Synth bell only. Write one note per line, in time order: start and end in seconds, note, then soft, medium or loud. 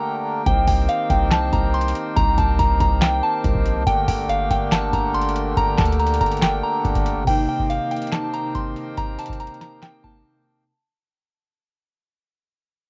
0.00 0.43 A#5 medium
0.46 0.66 G5 loud
0.68 0.88 G5 medium
0.89 1.09 F5 medium
1.10 1.30 G5 medium
1.32 1.51 A5 medium
1.53 1.73 A#5 medium
1.74 1.94 C6 medium
2.17 2.36 A#5 loud
2.38 2.58 A5 medium
2.59 2.79 A#5 medium
2.80 3.00 A#5 medium
3.02 3.22 G5 medium
3.23 3.83 A5 medium
3.87 4.07 G5 loud
4.08 4.28 G5 medium
4.29 4.49 F5 medium
4.51 4.71 G5 medium
4.72 4.92 A5 medium
4.93 5.13 A#5 medium
5.14 5.34 C6 medium
5.57 5.77 A#5 loud
5.78 5.98 A5 medium
6.00 6.19 A#5 medium
6.21 6.41 A#5 medium
6.42 6.62 G5 medium
6.63 7.23 A#5 medium
7.27 7.47 G5 loud
7.49 7.68 G5 medium
7.70 7.90 F5 medium
7.91 8.11 G5 medium
8.12 8.32 A5 medium
8.34 8.53 A#5 medium
8.55 8.75 C6 medium
8.98 9.17 A#5 loud
9.19 9.39 A5 medium
9.40 9.60 A#5 medium
9.61 9.81 A#5 medium
9.82 10.02 G5 medium
10.04 10.64 A5 medium